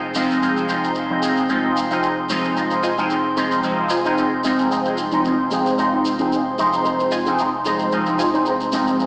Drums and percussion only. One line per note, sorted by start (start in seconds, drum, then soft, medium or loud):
0.15 shekere loud
0.31 shekere soft
0.43 shekere medium
0.57 shekere soft
0.69 shekere medium
0.84 shekere soft
0.95 shekere medium
1.23 closed hi-hat medium
1.23 shekere loud
1.37 shekere soft
1.49 shekere soft
1.76 closed hi-hat medium
1.76 shekere medium
1.91 shekere soft
2.03 shekere soft
2.29 closed hi-hat medium
2.29 shekere medium
2.44 shekere soft
2.56 shekere medium
2.71 shekere soft
2.83 shekere medium
2.98 shekere soft
3.10 shekere soft
3.37 closed hi-hat medium
3.37 shekere medium
3.52 shekere soft
3.63 shekere soft
3.90 closed hi-hat medium
3.90 shekere medium
4.05 shekere soft
4.18 shekere soft
4.44 closed hi-hat medium
4.44 shekere medium
4.59 shekere soft
4.71 shekere soft
4.85 shekere soft
4.97 closed hi-hat medium
4.97 shekere medium
5.12 shekere soft
5.25 shekere soft
5.51 closed hi-hat medium
5.51 shekere medium
5.66 shekere soft
5.78 shekere soft
6.05 closed hi-hat medium
6.05 shekere medium
6.19 shekere soft
6.32 shekere soft
6.58 closed hi-hat medium
6.58 shekere medium
6.73 shekere soft
6.85 shekere soft
7.00 shekere soft
7.11 shekere medium
7.26 shekere soft
7.39 shekere medium
7.65 closed hi-hat medium
7.65 shekere medium
7.79 shekere soft
7.92 shekere soft
8.06 shekere soft
8.19 shekere medium
8.34 shekere soft
8.46 shekere medium
8.60 shekere soft
8.72 closed hi-hat medium
8.72 shekere medium
8.87 shekere soft
9.00 shekere soft